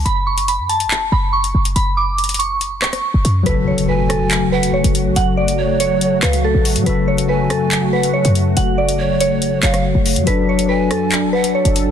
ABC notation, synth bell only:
X:1
M:4/4
L:1/8
Q:1/4=141
K:F#m
V:1 name="Synth bell"
b c' b a2 b c' z | b d'2 c' z c'3 | B c B A2 B c z | f d2 c2 B A z |
B c B A2 B c z | f d2 c z c3 | B c B A2 B c z |]